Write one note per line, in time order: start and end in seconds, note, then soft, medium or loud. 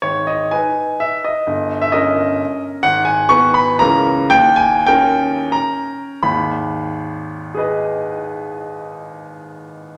0.02 0.51 G#1 soft
0.02 0.27 C#5 medium
0.27 0.53 D#5 medium
0.51 1.43 D#4 soft
0.51 1.43 B4 soft
0.51 1.01 G#5 medium
1.00 1.24 E5 medium
1.24 1.80 D#5 medium
1.47 1.91 G1 soft
1.81 1.93 E5 medium
1.92 2.81 C#4 soft
1.92 2.81 A#4 soft
1.92 2.62 D#5 medium
2.83 3.29 G#1 medium
2.83 3.06 F#5 loud
3.05 3.30 G#5 medium
3.29 3.76 B3 medium
3.29 3.76 B4 medium
3.29 3.55 C#6 loud
3.54 3.79 B5 medium
3.79 4.29 C#2 medium
3.79 4.27 E3 soft
3.79 4.27 C#4 soft
3.79 4.27 A#4 soft
3.79 4.30 A#5 loud
4.30 4.86 D#2 medium
4.30 4.57 G5 loud
4.56 4.87 G#5 medium
4.87 6.18 C#4 medium
4.87 6.18 A#4 medium
4.87 5.52 G5 loud
5.52 6.22 A#5 medium
6.23 9.97 G#1 medium
6.23 9.97 D#2 medium
6.23 9.97 B5 medium
7.54 9.97 G#4 soft
7.54 9.97 B4 soft
7.59 9.97 D#5 soft